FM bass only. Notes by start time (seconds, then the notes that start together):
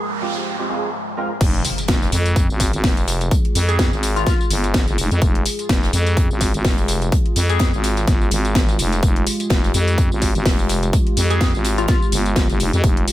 1.41 F1
1.88 F1
2.12 F2
2.50 G#1
2.73 G#1
2.84 F1
3.55 F2
3.92 G#1
4.50 G1
4.88 G1
4.98 F1
5.11 F2
5.22 F1
5.69 F1
5.93 F2
6.30 G#1
6.54 G#1
6.65 F1
7.36 F2
7.73 G#1
8.08 G1
8.31 G#1
8.79 F1
9.03 F1
9.50 F1
9.74 F2
10.11 G#1
10.35 G#1
10.46 F1
11.17 F2
11.54 G#1
12.12 G1
12.50 G1
12.60 F1
12.73 F2
12.84 F1